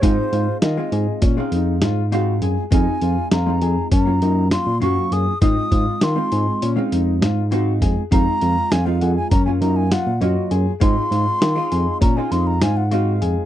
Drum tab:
HH |xxxxxxxxx|xxxxxxxxx|xxxxxxxxx|xxxxxxxxx|
SD |--o-o-oo-|--o---o--|--o---o-o|--o---o--|
BD |o---o----|o---o----|oo------o|o---o----|

HH |xxxxxxxxx|
SD |-oo-ooo--|
BD |o---o----|